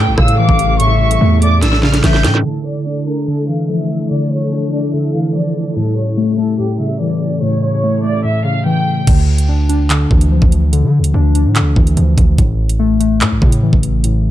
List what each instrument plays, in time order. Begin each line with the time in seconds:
Already playing: synth keys A2 A3, string section C#3 E3 G3 A4, flute G5, violin section G5
0.07 808-style bass A1
0.18 808-style bass A2, synth keys C#3, flute F5, violin section E6, kick, cross-stick
0.28 closed hi-hat
0.39 synth keys E3, violin section D6
0.49 808-style bass A1, kick
0.59 closed hi-hat
0.80 synth keys A2, flute E5, violin section C#6, closed hi-hat
1.01 violin section C#6
1.11 closed hi-hat
1.21 808-style bass E2, synth keys A3
1.42 synth keys A3, flute D5, violin section D6, closed hi-hat
1.62 808-style bass A#1, synth keys A2, violin section E6, snare, closed hi-hat
1.73 snare
1.83 synth keys C#3, violin section F6, snare
1.94 snare, closed hi-hat
2.04 808-style bass A1, synth keys E3, flute E5, violin section G6, snare, closed hi-hat
2.14 snare
2.24 808-style bass A2, flute G5, snare, closed hi-hat
2.35 snare
2.45 synth keys D3, string section D3 A3 E4 A4, violin section A4
2.66 violin section D5
2.86 synth keys D4
3.07 synth keys D4, violin section A#4
3.28 synth keys D3, violin section A4
3.49 synth keys E3, violin section F5
3.69 synth keys F3, violin section E5
4.11 synth keys D3, violin section D5
4.31 violin section C#5
4.52 synth keys D4
4.73 synth keys D4, violin section D5
4.93 synth keys D3, violin section E5
5.14 synth keys E3, violin section F5
5.35 synth keys F3, violin section D5
5.76 synth keys A2, string section C#3 G3, violin section A4
5.97 violin section C#5
6.17 synth keys A3
6.38 synth keys A3, violin section A4
6.59 synth keys A2, violin section G4
6.80 synth keys C#3, violin section E5
7.00 synth keys E3, violin section D5
7.42 synth keys A2, violin section C#5
7.63 violin section C#5
7.84 synth keys A3
8.04 synth keys A3, violin section D5
8.24 synth keys A2, violin section E5
8.45 synth keys C#3, violin section F5
8.66 synth keys E3, violin section G5
9.07 808-style bass D2, synth keys D3, kick, closed hi-hat, crash
9.38 closed hi-hat
9.49 synth keys D4
9.69 synth keys D4, closed hi-hat
9.90 synth keys D3, clap, closed hi-hat
10.11 808-style bass D2, synth keys E3, kick
10.21 closed hi-hat
10.31 synth keys F3
10.42 808-style bass D2, kick
10.52 closed hi-hat
10.72 synth keys D3, closed hi-hat
10.83 808-style bass D3
10.99 808-style bass D2
11.04 closed hi-hat
11.14 808-style bass D2, synth keys D4
11.35 synth keys D4, closed hi-hat
11.45 808-style bass A2
11.55 synth keys D3, clap, closed hi-hat
11.61 808-style bass D2
11.76 808-style bass D2, synth keys E3, kick
11.87 closed hi-hat
11.97 808-style bass D2, synth keys F3, closed hi-hat
12.18 808-style bass D2, kick, closed hi-hat
12.38 808-style bass A1, synth keys A2, kick, closed hi-hat
12.69 closed hi-hat
12.79 synth keys A3
13.00 synth keys A3, closed hi-hat
13.21 synth keys A2, 808-style bass A2, clap, closed hi-hat
13.31 808-style bass A1
13.42 808-style bass A2, synth keys C#3, kick
13.52 closed hi-hat
13.63 synth keys E3
13.73 808-style bass A1, kick
13.83 closed hi-hat
14.04 synth keys A2, closed hi-hat